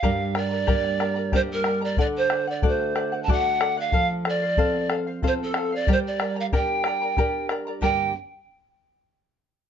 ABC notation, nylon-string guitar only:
X:1
M:3/4
L:1/8
Q:1/4=92
K:Gm
V:1 name="Nylon-string guitar"
G,,2 [G,B,D]2 [G,B,D]2 | D,2 [A,D^F]2 [A,DF]2 | F,2 [CFA]2 [CFA]2 | G,2 [DGB]2 [DGB]2 |
[G,,D,B,DGd] z4 z |]